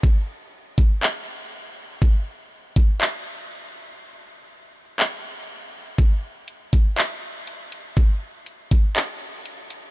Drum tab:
HH |--------|--------|--------|x-xxx-xx|
CP |----x---|----x---|----x---|----x---|
BD |o--o----|o--o----|--------|o--o----|

HH |x-xxx-xx|
CP |----x---|
BD |o--o----|